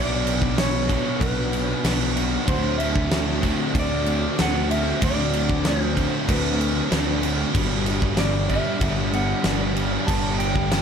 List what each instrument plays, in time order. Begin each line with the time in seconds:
Already playing: fingered electric bass B1, distorted electric guitar B2 F#3 B3, overdriven electric guitar B2 F#3 B3 D4 F#4, twelve-string acoustic guitar B3 D4 F#4, string machine D4 F#4 B4 B5, clean electric guitar D5
0.27 crash
0.42 kick
0.55 distorted electric guitar B2 F#3 B3, twelve-string acoustic guitar B3, clean electric guitar C#5, snare, crash
0.88 overdriven electric guitar B2 F#3 B3 D4 F#4, distorted electric guitar F#3 B3, twelve-string acoustic guitar D4, kick, crash
1.19 fingered electric bass B1, distorted electric guitar B2 F#3 B3, twelve-string acoustic guitar F#4, clean electric guitar B4, kick, crash
1.50 distorted electric guitar F#3 B3, twelve-string acoustic guitar B3, crash
1.82 fingered electric bass B1, distorted electric guitar B2 F#3 B3, overdriven electric guitar B2 F#3 B3 D4 F#4, twelve-string acoustic guitar D4, snare, crash
2.17 twelve-string acoustic guitar F#4, crash
2.46 fingered electric bass D2, overdriven electric guitar D3 A3 C4 F#4, distorted electric guitar D3 A3 D4, twelve-string acoustic guitar F#3, string machine C4 A5, clean electric guitar C5, kick, crash
2.78 clean electric guitar E5, crash
2.96 kick
3.09 distorted electric guitar D3 A3 D4, twelve-string acoustic guitar F#3, snare, crash
3.41 overdriven electric guitar D3 A3 C4 F#4, distorted electric guitar A3 D4, twelve-string acoustic guitar C4, kick, crash
3.73 fingered electric bass D2, distorted electric guitar D3 A3 D4, twelve-string acoustic guitar F#4, kick, crash
3.79 clean electric guitar D5
4.04 twelve-string acoustic guitar A3, distorted electric guitar A3 D4, crash
4.36 fingered electric bass D2, distorted electric guitar D3 A3 D4, overdriven electric guitar D3 A3 C4 F#4, twelve-string acoustic guitar C4, snare, crash
4.42 clean electric guitar F#5
4.70 twelve-string acoustic guitar F#4, clean electric guitar E5, crash
5.00 fingered electric bass D2, distorted electric guitar D3 A3 D4, overdriven electric guitar D3 A3 C4 F#4, twelve-string acoustic guitar F#3, string machine B5, kick, crash
5.04 clean electric guitar D5
5.33 crash
5.49 kick
5.63 distorted electric guitar D3 A3 D4, twelve-string acoustic guitar F#3, clean electric guitar C5, snare, crash
5.95 overdriven electric guitar D3 A3 C4 F#4, distorted electric guitar A3 D4, twelve-string acoustic guitar C4, kick, crash
6.27 fingered electric bass D2, distorted electric guitar D3 A3 D4, twelve-string acoustic guitar F#4, clean electric guitar B4, kick, crash
6.58 twelve-string acoustic guitar A3, distorted electric guitar A3 D4, crash
6.89 fingered electric bass D2, distorted electric guitar D3 A3 D4, overdriven electric guitar D3 A3 C4 F#4, twelve-string acoustic guitar C4, snare, crash
7.22 twelve-string acoustic guitar F#4, crash
7.53 fingered electric bass G1, distorted electric guitar G2 D3 G3, overdriven electric guitar G2 D3 G3 B3 D4, string machine G3 D5, twelve-string acoustic guitar B3, kick, crash
7.86 crash
8.02 kick
8.17 distorted electric guitar G2 D3 G3, twelve-string acoustic guitar B3, clean electric guitar D5, snare, crash
8.49 overdriven electric guitar G2 D3 G3 B3 D4, distorted electric guitar D3 G3, twelve-string acoustic guitar D4, clean electric guitar E5, kick, crash
8.79 fingered electric bass G1, distorted electric guitar G2 D3 G3, twelve-string acoustic guitar F#4, kick, crash
9.12 distorted electric guitar D3 G3, twelve-string acoustic guitar B3, clean electric guitar F#5, crash
9.42 fingered electric bass G1, overdriven electric guitar G2 D3 G3 B3 D4, distorted electric guitar G2 D3 G3, twelve-string acoustic guitar D4, snare, crash
9.76 crash
10.06 fingered electric bass G1, distorted electric guitar G2 D3 G3, overdriven electric guitar G2 D3 G3 B3 D4, twelve-string acoustic guitar B3, clean electric guitar A5, kick, crash
10.39 clean electric guitar G5, crash
10.56 kick
10.70 distorted electric guitar G2 D3 G3, twelve-string acoustic guitar B3, snare, crash